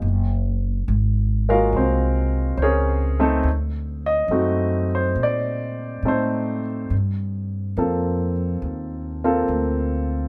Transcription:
0.02 upright bass F#1
0.88 upright bass G#1
1.49 grand piano G#3 A#3 F4 F#4 A#4 F5
1.73 upright bass C2, grand piano C5
1.77 grand piano C4
2.57 upright bass C#2, grand piano C5
2.62 grand piano C#4 G#4 A#4 C#5
3.19 grand piano A3 C4 D#4 A4
3.43 upright bass D2
4.06 grand piano D#5
4.28 upright bass F#2, grand piano A3 C4 D#4 F#4
4.95 grand piano C5
5.16 upright bass A#2
5.23 grand piano D5
6.03 upright bass A2, grand piano A3 C4 D#4 A4
6.08 grand piano C5
6.90 upright bass G2
7.77 upright bass F2, grand piano A#3 C4 F4 A4
8.62 upright bass D#2
9.24 grand piano A#3 C4 F4 A4
9.48 upright bass D2

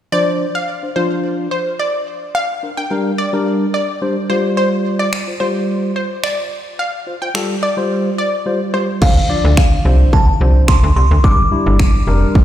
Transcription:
0.12 tine electric piano F3 D4 C5, synth pluck D5
0.55 synth pluck F5
0.83 tine electric piano D4 C5
0.96 tine electric piano F3 D4 F4, synth pluck C5
1.51 synth pluck C5
1.79 synth pluck D5
2.35 synth pluck F5
2.63 tine electric piano D4 A#4
2.77 tine electric piano D4 A#4, synth pluck G5
2.91 tine electric piano G3 D4 A#4
3.18 synth pluck D5
3.33 tine electric piano G3 D4 A#4
3.74 synth pluck D5
4.02 tine electric piano G3 D4 C5
4.29 tine electric piano G3 F4 C5, synth pluck C5
4.57 synth pluck C5
4.99 synth pluck D5
5.13 finger snap
5.28 tine electric piano F4 C5
5.40 tine electric piano G3 F4 C5, synth pluck C5
5.96 synth pluck C5
6.24 synth pluck D5, finger snap
6.79 synth pluck F5
7.07 tine electric piano F4 C5
7.22 tine electric piano F4 C5, synth pluck G5
7.35 tine electric piano G3 F4 A4, finger snap
7.63 synth pluck D5
7.77 tine electric piano G3 F4 C5
8.18 synth pluck D5
8.46 tine electric piano G3 F4 C5
8.74 tine electric piano G3 F4 C5, synth pluck C5
9.01 fm bass D2, tine electric piano F3 D4 C5, synth bell F5, kick, crash
9.29 tine electric piano F3 D4 D5
9.44 fm bass D2
9.57 synth bell F5, finger snap, kick
9.85 fm bass C2, tine electric piano F3 D4 C5
10.13 fm bass D2, synth bell A5, kick
10.40 fm bass C2, tine electric piano F3 D4 C5
10.68 synth bell C6, finger snap, kick
10.83 fm bass D2
10.96 fm bass C2, synth bell C6
11.11 fm bass D2
11.24 fm bass G1, tine electric piano G3 D4 A#4, synth bell D6, kick
11.51 tine electric piano G3 D4 E4
11.66 fm bass G1
11.79 finger snap, kick
12.07 fm bass F1, tine electric piano G3 D4 A#4
12.35 fm bass G1, kick

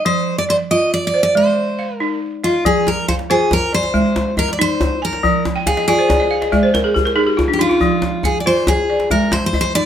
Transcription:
Already playing: balafon D#5
0.05 balafon F3, steel-string acoustic guitar C5
0.38 steel-string acoustic guitar D5
0.49 steel-string acoustic guitar C5, balafon D5
0.71 balafon F4, steel-string acoustic guitar D#5
0.94 steel-string acoustic guitar D5
1.07 steel-string acoustic guitar D5
1.14 balafon C5
1.23 steel-string acoustic guitar D5
1.35 balafon G#3, steel-string acoustic guitar C5
1.79 balafon F5
1.96 steel-string acoustic guitar A#4
2.00 balafon D#4
2.44 steel-string acoustic guitar F4, balafon D#5
2.65 balafon F3, steel-string acoustic guitar G#4, djembe bass
2.76 djembe slap
2.87 steel-string acoustic guitar A#4, djembe slap, djembe tone
3.08 steel-string acoustic guitar C5, balafon F5, djembe bass
3.19 djembe slap
3.30 balafon F4 C5, steel-string acoustic guitar G#4
3.51 steel-string acoustic guitar A#4, djembe slap, djembe bass
3.73 steel-string acoustic guitar C5, balafon D5
3.83 djembe slap
3.94 balafon G#3, djembe bass
4.16 djembe slap, djembe tone
4.37 steel-string acoustic guitar A#4, balafon D#5, djembe bass
4.48 djembe slap
4.53 steel-string acoustic guitar D5
4.59 balafon D#4, steel-string acoustic guitar C5, djembe slap
4.81 djembe slap, djembe tone, djembe bass
5.02 steel-string acoustic guitar A#4, balafon G#5
5.13 djembe slap
5.23 balafon F3, djembe bass
5.34 djembe slap
5.45 djembe slap, djembe tone
5.56 balafon G5
5.66 steel-string acoustic guitar G#4, balafon F5, djembe slap, djembe bass
5.77 balafon D#5, djembe slap
5.88 balafon F4 D5, steel-string acoustic guitar G#4, djembe slap
5.99 balafon C5
6.09 balafon D5, djembe slap, djembe tone, djembe bass
6.20 balafon D#5
6.31 balafon F5
6.42 balafon D#5, djembe slap
6.52 balafon G#3 D5, djembe bass
6.63 balafon C5
6.74 balafon A#4, djembe slap, djembe tone
6.84 balafon G#4
6.94 balafon G4, djembe bass
7.05 balafon A#4, djembe slap
7.16 balafon D#4 G#4, djembe slap
7.27 balafon G4
7.37 balafon F4, djembe slap, djembe bass
7.48 balafon D4
7.53 steel-string acoustic guitar G4
7.59 balafon D#4, steel-string acoustic guitar F4
7.69 balafon F4, djembe slap
7.81 balafon F3, djembe bass
7.92 djembe slap
8.02 djembe slap, djembe tone
8.23 steel-string acoustic guitar G#4, balafon F5, djembe slap, djembe bass
8.40 steel-string acoustic guitar D5
8.46 balafon F4 C5, steel-string acoustic guitar C5
8.67 steel-string acoustic guitar G#4, djembe slap, djembe tone, djembe bass
8.90 balafon D5
9.00 djembe slap
9.10 balafon G#3, steel-string acoustic guitar A#4, djembe bass
9.32 steel-string acoustic guitar C5, djembe slap, djembe tone
9.46 steel-string acoustic guitar C5
9.53 balafon D#5, djembe bass
9.61 steel-string acoustic guitar C5, djembe slap
9.75 balafon D#4, steel-string acoustic guitar D5, djembe slap

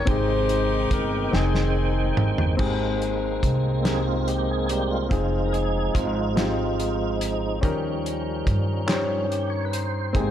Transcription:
0.05 upright bass G#1, grand piano C3 G#3 C4 D#4 G4, tonewheel organ D#3 G#3 C4 G5, saxophone section D#4 G4 C5, kick, closed hi-hat
0.49 closed hi-hat
0.91 upright bass G1, saxophone section A#4, kick, closed hi-hat
1.31 upright bass F1, grand piano C4 D#4 G#4 G5, saxophone section C4 D#4 G#4, snare
1.55 snare
2.17 upright bass G1, mid tom
2.38 floor tom
2.57 upright bass G#1, grand piano G#2 C4 D#4 G4 G#4, tonewheel organ G#3 A#3 C4, kick, crash
3.02 closed hi-hat
3.43 upright bass C2, kick, closed hi-hat
3.83 grand piano C4 D#4 G4 A#4, snare, closed hi-hat
3.87 tonewheel organ G#4
4.07 tonewheel organ F4
4.28 tonewheel organ G4, closed hi-hat
4.50 tonewheel organ G#4
4.69 tonewheel organ G3 A#3 C4 G4, closed hi-hat
4.91 tonewheel organ F4
5.09 upright bass F1, tonewheel organ F3 G#3 D#4, grand piano C4 D#4 F4 G#4, kick, closed hi-hat
5.46 tonewheel organ A#4
5.53 tonewheel organ G#4, closed hi-hat
5.94 upright bass G#1, tonewheel organ F4, kick, closed hi-hat
6.36 grand piano C4 D#4 F4 G4, snare, closed hi-hat
6.80 closed hi-hat
7.21 closed hi-hat
7.61 upright bass D#2, grand piano D#3 C#4 D#4 G4 A#4, tonewheel organ F3 G3 C#4, kick, closed hi-hat
8.06 closed hi-hat
8.47 upright bass G2, kick, closed hi-hat
8.86 tonewheel organ F3 G3 C#4, grand piano C#4 D#4 G4 C5, snare, clap, closed hi-hat
8.96 grand piano C#5
9.30 tonewheel organ G4, closed hi-hat
9.50 tonewheel organ C#5
9.65 tonewheel organ B4
9.73 tonewheel organ C5, closed hi-hat
10.13 upright bass G#1, grand piano G#2 C4 D#4 G4 G#4, tonewheel organ G#3 A#3 C4, kick, closed hi-hat

